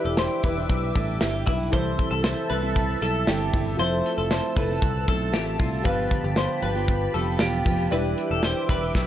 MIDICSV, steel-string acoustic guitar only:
0, 0, Header, 1, 2, 480
1, 0, Start_track
1, 0, Key_signature, 0, "major"
1, 0, Tempo, 515907
1, 1605, Time_signature, 4, 2, 24, 8
1, 8435, End_track
2, 0, Start_track
2, 0, Title_t, "Steel-string acoustic guitar"
2, 0, Program_c, 0, 25
2, 0, Note_on_c, 0, 52, 82
2, 0, Note_on_c, 0, 55, 89
2, 0, Note_on_c, 0, 62, 85
2, 0, Note_on_c, 0, 64, 91
2, 0, Note_on_c, 0, 71, 92
2, 395, Note_off_c, 0, 55, 0
2, 396, Note_off_c, 0, 62, 0
2, 399, Note_on_c, 0, 55, 60
2, 407, Note_on_c, 0, 62, 68
2, 408, Note_off_c, 0, 71, 0
2, 410, Note_off_c, 0, 64, 0
2, 414, Note_on_c, 0, 64, 68
2, 418, Note_on_c, 0, 71, 62
2, 435, Note_off_c, 0, 52, 0
2, 509, Note_off_c, 0, 71, 0
2, 515, Note_off_c, 0, 64, 0
2, 520, Note_on_c, 0, 71, 60
2, 521, Note_off_c, 0, 62, 0
2, 522, Note_off_c, 0, 55, 0
2, 526, Note_on_c, 0, 64, 56
2, 533, Note_on_c, 0, 62, 48
2, 872, Note_off_c, 0, 62, 0
2, 878, Note_on_c, 0, 55, 65
2, 882, Note_off_c, 0, 64, 0
2, 882, Note_off_c, 0, 71, 0
2, 883, Note_on_c, 0, 62, 68
2, 893, Note_on_c, 0, 64, 64
2, 895, Note_on_c, 0, 71, 72
2, 1098, Note_off_c, 0, 55, 0
2, 1107, Note_off_c, 0, 62, 0
2, 1109, Note_on_c, 0, 55, 70
2, 1110, Note_off_c, 0, 64, 0
2, 1117, Note_off_c, 0, 71, 0
2, 1119, Note_on_c, 0, 62, 67
2, 1121, Note_on_c, 0, 64, 68
2, 1128, Note_on_c, 0, 71, 77
2, 1350, Note_off_c, 0, 55, 0
2, 1356, Note_off_c, 0, 62, 0
2, 1361, Note_on_c, 0, 55, 64
2, 1363, Note_off_c, 0, 64, 0
2, 1366, Note_off_c, 0, 71, 0
2, 1367, Note_on_c, 0, 62, 63
2, 1373, Note_on_c, 0, 64, 69
2, 1378, Note_on_c, 0, 71, 79
2, 1590, Note_off_c, 0, 55, 0
2, 1594, Note_on_c, 0, 48, 84
2, 1596, Note_off_c, 0, 64, 0
2, 1599, Note_on_c, 0, 52, 90
2, 1600, Note_off_c, 0, 62, 0
2, 1601, Note_off_c, 0, 71, 0
2, 1601, Note_on_c, 0, 55, 89
2, 1603, Note_on_c, 0, 60, 85
2, 1605, Note_on_c, 0, 69, 92
2, 1607, Note_on_c, 0, 64, 92
2, 2312, Note_off_c, 0, 55, 0
2, 2319, Note_off_c, 0, 48, 0
2, 2323, Note_on_c, 0, 55, 60
2, 2324, Note_off_c, 0, 60, 0
2, 2328, Note_off_c, 0, 64, 0
2, 2328, Note_on_c, 0, 60, 66
2, 2332, Note_on_c, 0, 64, 71
2, 2335, Note_off_c, 0, 69, 0
2, 2339, Note_on_c, 0, 69, 70
2, 2424, Note_off_c, 0, 69, 0
2, 2428, Note_off_c, 0, 64, 0
2, 2435, Note_on_c, 0, 69, 59
2, 2436, Note_off_c, 0, 60, 0
2, 2439, Note_on_c, 0, 64, 55
2, 2444, Note_off_c, 0, 55, 0
2, 2447, Note_on_c, 0, 60, 53
2, 2456, Note_on_c, 0, 55, 46
2, 2783, Note_off_c, 0, 55, 0
2, 2788, Note_off_c, 0, 60, 0
2, 2792, Note_off_c, 0, 64, 0
2, 2795, Note_on_c, 0, 55, 65
2, 2799, Note_on_c, 0, 60, 63
2, 2800, Note_off_c, 0, 69, 0
2, 2803, Note_on_c, 0, 64, 66
2, 2811, Note_on_c, 0, 69, 77
2, 3026, Note_off_c, 0, 55, 0
2, 3037, Note_off_c, 0, 60, 0
2, 3037, Note_on_c, 0, 55, 67
2, 3041, Note_off_c, 0, 64, 0
2, 3046, Note_off_c, 0, 69, 0
2, 3048, Note_on_c, 0, 60, 76
2, 3052, Note_on_c, 0, 64, 80
2, 3057, Note_on_c, 0, 69, 73
2, 3275, Note_off_c, 0, 55, 0
2, 3277, Note_off_c, 0, 60, 0
2, 3284, Note_off_c, 0, 64, 0
2, 3286, Note_on_c, 0, 55, 69
2, 3288, Note_off_c, 0, 69, 0
2, 3288, Note_on_c, 0, 60, 66
2, 3295, Note_on_c, 0, 64, 74
2, 3299, Note_on_c, 0, 69, 74
2, 3514, Note_off_c, 0, 52, 0
2, 3517, Note_off_c, 0, 60, 0
2, 3517, Note_off_c, 0, 64, 0
2, 3518, Note_on_c, 0, 53, 78
2, 3519, Note_off_c, 0, 69, 0
2, 3521, Note_off_c, 0, 55, 0
2, 3525, Note_on_c, 0, 57, 85
2, 3528, Note_on_c, 0, 60, 85
2, 3528, Note_on_c, 0, 64, 93
2, 3531, Note_on_c, 0, 69, 87
2, 4234, Note_off_c, 0, 57, 0
2, 4241, Note_off_c, 0, 60, 0
2, 4245, Note_on_c, 0, 57, 59
2, 4247, Note_off_c, 0, 64, 0
2, 4248, Note_off_c, 0, 69, 0
2, 4252, Note_on_c, 0, 60, 72
2, 4258, Note_on_c, 0, 64, 70
2, 4267, Note_on_c, 0, 69, 68
2, 4286, Note_off_c, 0, 53, 0
2, 4352, Note_off_c, 0, 69, 0
2, 4362, Note_off_c, 0, 64, 0
2, 4363, Note_on_c, 0, 69, 58
2, 4365, Note_off_c, 0, 57, 0
2, 4367, Note_off_c, 0, 60, 0
2, 4374, Note_on_c, 0, 64, 52
2, 4378, Note_on_c, 0, 60, 54
2, 4719, Note_off_c, 0, 60, 0
2, 4722, Note_on_c, 0, 57, 61
2, 4724, Note_off_c, 0, 64, 0
2, 4724, Note_off_c, 0, 69, 0
2, 4730, Note_on_c, 0, 60, 66
2, 4735, Note_on_c, 0, 64, 72
2, 4737, Note_on_c, 0, 69, 74
2, 4939, Note_off_c, 0, 57, 0
2, 4947, Note_off_c, 0, 60, 0
2, 4950, Note_on_c, 0, 57, 67
2, 4953, Note_off_c, 0, 64, 0
2, 4958, Note_on_c, 0, 60, 68
2, 4960, Note_off_c, 0, 69, 0
2, 4964, Note_on_c, 0, 64, 74
2, 4971, Note_on_c, 0, 69, 80
2, 5180, Note_off_c, 0, 57, 0
2, 5188, Note_off_c, 0, 60, 0
2, 5191, Note_on_c, 0, 57, 66
2, 5194, Note_off_c, 0, 64, 0
2, 5195, Note_off_c, 0, 69, 0
2, 5199, Note_on_c, 0, 60, 67
2, 5205, Note_on_c, 0, 64, 77
2, 5207, Note_on_c, 0, 69, 78
2, 5426, Note_on_c, 0, 43, 95
2, 5431, Note_off_c, 0, 57, 0
2, 5433, Note_on_c, 0, 50, 94
2, 5434, Note_off_c, 0, 60, 0
2, 5435, Note_on_c, 0, 53, 91
2, 5437, Note_off_c, 0, 64, 0
2, 5437, Note_off_c, 0, 69, 0
2, 5438, Note_on_c, 0, 59, 95
2, 5440, Note_on_c, 0, 67, 92
2, 5441, Note_on_c, 0, 65, 90
2, 6141, Note_off_c, 0, 53, 0
2, 6152, Note_on_c, 0, 53, 63
2, 6153, Note_off_c, 0, 65, 0
2, 6156, Note_off_c, 0, 43, 0
2, 6159, Note_off_c, 0, 59, 0
2, 6163, Note_on_c, 0, 59, 63
2, 6165, Note_on_c, 0, 65, 63
2, 6168, Note_off_c, 0, 67, 0
2, 6172, Note_on_c, 0, 67, 72
2, 6267, Note_off_c, 0, 67, 0
2, 6274, Note_off_c, 0, 59, 0
2, 6274, Note_off_c, 0, 65, 0
2, 6279, Note_off_c, 0, 53, 0
2, 6279, Note_on_c, 0, 67, 64
2, 6285, Note_on_c, 0, 59, 49
2, 6286, Note_on_c, 0, 65, 60
2, 6294, Note_on_c, 0, 53, 47
2, 6632, Note_off_c, 0, 53, 0
2, 6639, Note_off_c, 0, 59, 0
2, 6642, Note_off_c, 0, 67, 0
2, 6644, Note_on_c, 0, 53, 70
2, 6646, Note_off_c, 0, 65, 0
2, 6651, Note_on_c, 0, 59, 73
2, 6656, Note_on_c, 0, 65, 66
2, 6660, Note_on_c, 0, 67, 81
2, 6865, Note_off_c, 0, 53, 0
2, 6873, Note_off_c, 0, 59, 0
2, 6875, Note_off_c, 0, 65, 0
2, 6876, Note_on_c, 0, 53, 65
2, 6884, Note_off_c, 0, 67, 0
2, 6884, Note_on_c, 0, 59, 65
2, 6887, Note_on_c, 0, 65, 79
2, 6896, Note_on_c, 0, 67, 75
2, 7100, Note_off_c, 0, 53, 0
2, 7110, Note_off_c, 0, 59, 0
2, 7111, Note_on_c, 0, 53, 66
2, 7115, Note_off_c, 0, 65, 0
2, 7120, Note_off_c, 0, 67, 0
2, 7121, Note_on_c, 0, 59, 73
2, 7126, Note_on_c, 0, 65, 77
2, 7131, Note_on_c, 0, 67, 71
2, 7355, Note_off_c, 0, 50, 0
2, 7358, Note_off_c, 0, 53, 0
2, 7358, Note_on_c, 0, 52, 82
2, 7360, Note_off_c, 0, 59, 0
2, 7363, Note_on_c, 0, 55, 86
2, 7364, Note_on_c, 0, 62, 87
2, 7366, Note_off_c, 0, 65, 0
2, 7366, Note_off_c, 0, 67, 0
2, 7369, Note_on_c, 0, 64, 94
2, 7369, Note_on_c, 0, 71, 90
2, 8071, Note_off_c, 0, 62, 0
2, 8072, Note_off_c, 0, 55, 0
2, 8076, Note_on_c, 0, 55, 59
2, 8082, Note_on_c, 0, 62, 65
2, 8084, Note_off_c, 0, 71, 0
2, 8086, Note_off_c, 0, 64, 0
2, 8090, Note_on_c, 0, 64, 72
2, 8095, Note_on_c, 0, 71, 71
2, 8110, Note_off_c, 0, 52, 0
2, 8193, Note_off_c, 0, 71, 0
2, 8201, Note_off_c, 0, 55, 0
2, 8202, Note_off_c, 0, 64, 0
2, 8204, Note_off_c, 0, 62, 0
2, 8204, Note_on_c, 0, 71, 58
2, 8213, Note_on_c, 0, 64, 50
2, 8218, Note_on_c, 0, 62, 48
2, 8435, Note_off_c, 0, 62, 0
2, 8435, Note_off_c, 0, 64, 0
2, 8435, Note_off_c, 0, 71, 0
2, 8435, End_track
0, 0, End_of_file